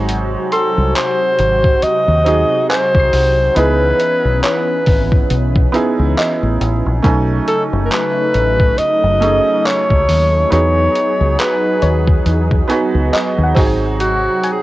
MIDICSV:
0, 0, Header, 1, 8, 480
1, 0, Start_track
1, 0, Tempo, 869565
1, 47, Time_signature, 4, 2, 24, 8
1, 8074, End_track
2, 0, Start_track
2, 0, Title_t, "Synth pluck"
2, 0, Program_c, 0, 84
2, 0, Note_on_c, 0, 78, 61
2, 288, Note_on_c, 0, 84, 85
2, 561, Note_off_c, 0, 78, 0
2, 1041, Note_off_c, 0, 84, 0
2, 1488, Note_on_c, 0, 80, 83
2, 1654, Note_on_c, 0, 96, 57
2, 1970, Note_on_c, 0, 75, 71
2, 2186, Note_off_c, 0, 80, 0
2, 2338, Note_off_c, 0, 96, 0
2, 2449, Note_on_c, 0, 73, 68
2, 2722, Note_off_c, 0, 75, 0
2, 3201, Note_off_c, 0, 73, 0
2, 3411, Note_on_c, 0, 75, 64
2, 4107, Note_off_c, 0, 75, 0
2, 6527, Note_on_c, 0, 73, 76
2, 7248, Note_on_c, 0, 75, 72
2, 7280, Note_off_c, 0, 73, 0
2, 7415, Note_on_c, 0, 78, 55
2, 7545, Note_on_c, 0, 80, 51
2, 7706, Note_off_c, 0, 75, 0
2, 7859, Note_off_c, 0, 78, 0
2, 7963, Note_off_c, 0, 80, 0
2, 7969, Note_on_c, 0, 80, 87
2, 8074, Note_off_c, 0, 80, 0
2, 8074, End_track
3, 0, Start_track
3, 0, Title_t, "Alto saxophone"
3, 0, Program_c, 1, 65
3, 290, Note_on_c, 1, 69, 96
3, 512, Note_off_c, 1, 69, 0
3, 530, Note_on_c, 1, 72, 104
3, 1011, Note_on_c, 1, 75, 124
3, 1019, Note_off_c, 1, 72, 0
3, 1486, Note_off_c, 1, 75, 0
3, 1489, Note_on_c, 1, 72, 109
3, 1970, Note_on_c, 1, 71, 109
3, 1979, Note_off_c, 1, 72, 0
3, 2449, Note_off_c, 1, 71, 0
3, 2452, Note_on_c, 1, 71, 83
3, 2907, Note_off_c, 1, 71, 0
3, 4128, Note_on_c, 1, 69, 94
3, 4217, Note_off_c, 1, 69, 0
3, 4337, Note_on_c, 1, 70, 71
3, 4368, Note_on_c, 1, 71, 99
3, 4377, Note_off_c, 1, 70, 0
3, 4848, Note_on_c, 1, 75, 122
3, 4857, Note_off_c, 1, 71, 0
3, 5329, Note_on_c, 1, 73, 105
3, 5337, Note_off_c, 1, 75, 0
3, 5807, Note_off_c, 1, 73, 0
3, 5810, Note_on_c, 1, 73, 113
3, 6267, Note_off_c, 1, 73, 0
3, 6292, Note_on_c, 1, 71, 89
3, 6748, Note_off_c, 1, 71, 0
3, 7730, Note_on_c, 1, 66, 94
3, 8016, Note_on_c, 1, 68, 77
3, 8024, Note_off_c, 1, 66, 0
3, 8074, Note_off_c, 1, 68, 0
3, 8074, End_track
4, 0, Start_track
4, 0, Title_t, "Felt piano"
4, 0, Program_c, 2, 0
4, 0, Control_c, 2, 64, 127
4, 0, Note_on_c, 2, 56, 112
4, 0, Note_on_c, 2, 60, 102
4, 0, Note_on_c, 2, 63, 92
4, 0, Note_on_c, 2, 66, 94
4, 578, Note_off_c, 2, 60, 0
4, 582, Note_off_c, 2, 63, 0
4, 585, Note_off_c, 2, 66, 0
4, 588, Note_off_c, 2, 56, 0
4, 1239, Note_on_c, 2, 60, 75
4, 1246, Note_on_c, 2, 63, 69
4, 1252, Note_on_c, 2, 66, 72
4, 1259, Note_on_c, 2, 68, 88
4, 1774, Note_off_c, 2, 60, 0
4, 1777, Note_off_c, 2, 63, 0
4, 1780, Note_off_c, 2, 66, 0
4, 1784, Note_off_c, 2, 68, 0
4, 1959, Note_on_c, 2, 59, 78
4, 1966, Note_on_c, 2, 63, 70
4, 1973, Note_on_c, 2, 64, 70
4, 1975, Control_c, 2, 64, 0
4, 1979, Note_on_c, 2, 68, 88
4, 2072, Control_c, 2, 64, 127
4, 2665, Note_off_c, 2, 59, 0
4, 2668, Note_off_c, 2, 63, 0
4, 2672, Note_off_c, 2, 64, 0
4, 2675, Note_off_c, 2, 68, 0
4, 3158, Note_on_c, 2, 59, 93
4, 3164, Note_on_c, 2, 63, 85
4, 3171, Note_on_c, 2, 64, 84
4, 3177, Note_on_c, 2, 68, 101
4, 3693, Note_off_c, 2, 59, 0
4, 3696, Note_off_c, 2, 63, 0
4, 3700, Note_off_c, 2, 64, 0
4, 3703, Note_off_c, 2, 68, 0
4, 3878, Note_on_c, 2, 57, 94
4, 3885, Note_on_c, 2, 61, 84
4, 3891, Note_on_c, 2, 63, 89
4, 3894, Control_c, 2, 64, 0
4, 3897, Note_on_c, 2, 80, 103
4, 3977, Control_c, 2, 64, 127
4, 4584, Note_off_c, 2, 57, 0
4, 4588, Note_off_c, 2, 61, 0
4, 4591, Note_off_c, 2, 63, 0
4, 4594, Note_off_c, 2, 80, 0
4, 5078, Note_on_c, 2, 57, 82
4, 5085, Note_on_c, 2, 61, 72
4, 5092, Note_on_c, 2, 63, 71
4, 5098, Note_on_c, 2, 68, 87
4, 5613, Note_off_c, 2, 57, 0
4, 5617, Note_off_c, 2, 61, 0
4, 5620, Note_off_c, 2, 63, 0
4, 5623, Note_off_c, 2, 68, 0
4, 5798, Note_on_c, 2, 59, 78
4, 5804, Note_on_c, 2, 63, 74
4, 5811, Note_on_c, 2, 66, 70
4, 5816, Control_c, 2, 64, 0
4, 5817, Note_on_c, 2, 68, 87
4, 5902, Control_c, 2, 64, 127
4, 6504, Note_off_c, 2, 59, 0
4, 6508, Note_off_c, 2, 63, 0
4, 6511, Note_off_c, 2, 66, 0
4, 6514, Note_off_c, 2, 68, 0
4, 6997, Note_on_c, 2, 59, 96
4, 7004, Note_on_c, 2, 63, 88
4, 7007, Note_on_c, 2, 80, 79
4, 7010, Note_on_c, 2, 66, 86
4, 7017, Note_on_c, 2, 71, 100
4, 7230, Note_off_c, 2, 80, 0
4, 7247, Note_on_c, 2, 75, 82
4, 7475, Note_off_c, 2, 63, 0
4, 7477, Note_on_c, 2, 60, 100
4, 7482, Note_off_c, 2, 59, 0
4, 7482, Note_off_c, 2, 66, 0
4, 7484, Note_on_c, 2, 63, 86
4, 7490, Note_on_c, 2, 66, 90
4, 7492, Note_off_c, 2, 71, 0
4, 7495, Control_c, 2, 64, 0
4, 7496, Note_on_c, 2, 68, 104
4, 7590, Control_c, 2, 64, 127
4, 7705, Note_off_c, 2, 75, 0
4, 8074, Note_off_c, 2, 60, 0
4, 8074, Note_off_c, 2, 63, 0
4, 8074, Note_off_c, 2, 66, 0
4, 8074, Note_off_c, 2, 68, 0
4, 8074, End_track
5, 0, Start_track
5, 0, Title_t, "Analog synth pad"
5, 0, Program_c, 3, 89
5, 0, Note_on_c, 3, 48, 87
5, 0, Note_on_c, 3, 54, 79
5, 0, Note_on_c, 3, 66, 93
5, 1945, Note_off_c, 3, 48, 0
5, 1945, Note_off_c, 3, 66, 0
5, 1946, Note_off_c, 3, 54, 0
5, 1968, Note_on_c, 3, 59, 74
5, 1969, Note_on_c, 3, 52, 84
5, 1969, Note_on_c, 3, 61, 88
5, 3868, Note_off_c, 3, 59, 0
5, 3869, Note_off_c, 3, 52, 0
5, 3869, Note_off_c, 3, 61, 0
5, 3887, Note_on_c, 3, 49, 82
5, 3887, Note_on_c, 3, 54, 79
5, 3887, Note_on_c, 3, 57, 71
5, 3887, Note_on_c, 3, 63, 85
5, 5788, Note_off_c, 3, 49, 0
5, 5788, Note_off_c, 3, 57, 0
5, 5788, Note_off_c, 3, 63, 0
5, 5808, Note_on_c, 3, 63, 88
5, 5809, Note_on_c, 3, 68, 92
5, 7471, Note_off_c, 3, 63, 0
5, 7471, Note_off_c, 3, 68, 0
5, 7485, Note_on_c, 3, 48, 85
5, 7486, Note_on_c, 3, 66, 92
5, 8074, Note_off_c, 3, 48, 0
5, 8074, Note_off_c, 3, 54, 0
5, 8074, Note_off_c, 3, 66, 0
5, 8074, End_track
6, 0, Start_track
6, 0, Title_t, "Fingered electric bass"
6, 0, Program_c, 4, 33
6, 0, Note_on_c, 4, 32, 92
6, 194, Note_off_c, 4, 32, 0
6, 428, Note_on_c, 4, 36, 95
6, 509, Note_off_c, 4, 36, 0
6, 769, Note_on_c, 4, 32, 91
6, 962, Note_off_c, 4, 32, 0
6, 1148, Note_on_c, 4, 39, 91
6, 1341, Note_off_c, 4, 39, 0
6, 1628, Note_on_c, 4, 36, 81
6, 1708, Note_off_c, 4, 36, 0
6, 1729, Note_on_c, 4, 36, 84
6, 1922, Note_off_c, 4, 36, 0
6, 1968, Note_on_c, 4, 37, 119
6, 2161, Note_off_c, 4, 37, 0
6, 2347, Note_on_c, 4, 35, 88
6, 2428, Note_off_c, 4, 35, 0
6, 2689, Note_on_c, 4, 32, 88
6, 2882, Note_off_c, 4, 32, 0
6, 2928, Note_on_c, 4, 35, 98
6, 3121, Note_off_c, 4, 35, 0
6, 3308, Note_on_c, 4, 37, 82
6, 3388, Note_off_c, 4, 37, 0
6, 3548, Note_on_c, 4, 33, 96
6, 3628, Note_off_c, 4, 33, 0
6, 3648, Note_on_c, 4, 33, 95
6, 3760, Note_off_c, 4, 33, 0
6, 3787, Note_on_c, 4, 34, 92
6, 3868, Note_off_c, 4, 34, 0
6, 3888, Note_on_c, 4, 35, 115
6, 4081, Note_off_c, 4, 35, 0
6, 4267, Note_on_c, 4, 30, 91
6, 4348, Note_off_c, 4, 30, 0
6, 4608, Note_on_c, 4, 33, 93
6, 4801, Note_off_c, 4, 33, 0
6, 4988, Note_on_c, 4, 30, 91
6, 5181, Note_off_c, 4, 30, 0
6, 5468, Note_on_c, 4, 37, 89
6, 5548, Note_off_c, 4, 37, 0
6, 5568, Note_on_c, 4, 39, 87
6, 5761, Note_off_c, 4, 39, 0
6, 5807, Note_on_c, 4, 40, 113
6, 6001, Note_off_c, 4, 40, 0
6, 6187, Note_on_c, 4, 37, 93
6, 6268, Note_off_c, 4, 37, 0
6, 6528, Note_on_c, 4, 39, 94
6, 6721, Note_off_c, 4, 39, 0
6, 6767, Note_on_c, 4, 40, 101
6, 6961, Note_off_c, 4, 40, 0
6, 7147, Note_on_c, 4, 37, 85
6, 7228, Note_off_c, 4, 37, 0
6, 7387, Note_on_c, 4, 39, 94
6, 7468, Note_off_c, 4, 39, 0
6, 7487, Note_on_c, 4, 32, 88
6, 7874, Note_off_c, 4, 32, 0
6, 8074, End_track
7, 0, Start_track
7, 0, Title_t, "Muted fingered electric bass strokes"
7, 1009, Note_on_c, 9, 29, 49
7, 1065, Note_off_c, 9, 29, 0
7, 4849, Note_on_c, 9, 29, 45
7, 4904, Note_off_c, 9, 29, 0
7, 8074, End_track
8, 0, Start_track
8, 0, Title_t, "Drums"
8, 48, Note_on_c, 9, 42, 79
8, 103, Note_off_c, 9, 42, 0
8, 287, Note_on_c, 9, 42, 68
8, 342, Note_off_c, 9, 42, 0
8, 526, Note_on_c, 9, 42, 81
8, 532, Note_on_c, 9, 39, 118
8, 581, Note_off_c, 9, 42, 0
8, 587, Note_off_c, 9, 39, 0
8, 765, Note_on_c, 9, 42, 59
8, 820, Note_off_c, 9, 42, 0
8, 906, Note_on_c, 9, 36, 90
8, 961, Note_off_c, 9, 36, 0
8, 1007, Note_on_c, 9, 42, 71
8, 1062, Note_off_c, 9, 42, 0
8, 1249, Note_on_c, 9, 42, 65
8, 1304, Note_off_c, 9, 42, 0
8, 1495, Note_on_c, 9, 39, 105
8, 1550, Note_off_c, 9, 39, 0
8, 1627, Note_on_c, 9, 36, 93
8, 1682, Note_off_c, 9, 36, 0
8, 1729, Note_on_c, 9, 46, 80
8, 1784, Note_off_c, 9, 46, 0
8, 1967, Note_on_c, 9, 42, 74
8, 2022, Note_off_c, 9, 42, 0
8, 2207, Note_on_c, 9, 42, 72
8, 2262, Note_off_c, 9, 42, 0
8, 2446, Note_on_c, 9, 42, 80
8, 2452, Note_on_c, 9, 39, 109
8, 2501, Note_off_c, 9, 42, 0
8, 2507, Note_off_c, 9, 39, 0
8, 2685, Note_on_c, 9, 46, 45
8, 2688, Note_on_c, 9, 36, 89
8, 2740, Note_off_c, 9, 46, 0
8, 2744, Note_off_c, 9, 36, 0
8, 2825, Note_on_c, 9, 36, 98
8, 2881, Note_off_c, 9, 36, 0
8, 2926, Note_on_c, 9, 42, 70
8, 2982, Note_off_c, 9, 42, 0
8, 3067, Note_on_c, 9, 36, 96
8, 3122, Note_off_c, 9, 36, 0
8, 3170, Note_on_c, 9, 42, 68
8, 3225, Note_off_c, 9, 42, 0
8, 3414, Note_on_c, 9, 39, 109
8, 3470, Note_off_c, 9, 39, 0
8, 3650, Note_on_c, 9, 42, 70
8, 3705, Note_off_c, 9, 42, 0
8, 3887, Note_on_c, 9, 36, 102
8, 3888, Note_on_c, 9, 42, 77
8, 3942, Note_off_c, 9, 36, 0
8, 3943, Note_off_c, 9, 42, 0
8, 4128, Note_on_c, 9, 42, 68
8, 4183, Note_off_c, 9, 42, 0
8, 4367, Note_on_c, 9, 42, 79
8, 4373, Note_on_c, 9, 39, 110
8, 4422, Note_off_c, 9, 42, 0
8, 4428, Note_off_c, 9, 39, 0
8, 4605, Note_on_c, 9, 42, 60
8, 4660, Note_off_c, 9, 42, 0
8, 4745, Note_on_c, 9, 36, 93
8, 4801, Note_off_c, 9, 36, 0
8, 4846, Note_on_c, 9, 42, 69
8, 4902, Note_off_c, 9, 42, 0
8, 5089, Note_on_c, 9, 42, 65
8, 5145, Note_off_c, 9, 42, 0
8, 5335, Note_on_c, 9, 39, 101
8, 5390, Note_off_c, 9, 39, 0
8, 5467, Note_on_c, 9, 36, 85
8, 5522, Note_off_c, 9, 36, 0
8, 5569, Note_on_c, 9, 46, 82
8, 5624, Note_off_c, 9, 46, 0
8, 5808, Note_on_c, 9, 42, 77
8, 5863, Note_off_c, 9, 42, 0
8, 6047, Note_on_c, 9, 42, 69
8, 6103, Note_off_c, 9, 42, 0
8, 6287, Note_on_c, 9, 42, 78
8, 6293, Note_on_c, 9, 39, 110
8, 6342, Note_off_c, 9, 42, 0
8, 6348, Note_off_c, 9, 39, 0
8, 6525, Note_on_c, 9, 42, 57
8, 6581, Note_off_c, 9, 42, 0
8, 6665, Note_on_c, 9, 36, 97
8, 6720, Note_off_c, 9, 36, 0
8, 6767, Note_on_c, 9, 42, 69
8, 6822, Note_off_c, 9, 42, 0
8, 6906, Note_on_c, 9, 36, 93
8, 6962, Note_off_c, 9, 36, 0
8, 7009, Note_on_c, 9, 42, 66
8, 7064, Note_off_c, 9, 42, 0
8, 7255, Note_on_c, 9, 39, 105
8, 7310, Note_off_c, 9, 39, 0
8, 7487, Note_on_c, 9, 36, 107
8, 7489, Note_on_c, 9, 46, 78
8, 7542, Note_off_c, 9, 36, 0
8, 7544, Note_off_c, 9, 46, 0
8, 7728, Note_on_c, 9, 42, 80
8, 7783, Note_off_c, 9, 42, 0
8, 7968, Note_on_c, 9, 42, 71
8, 8023, Note_off_c, 9, 42, 0
8, 8074, End_track
0, 0, End_of_file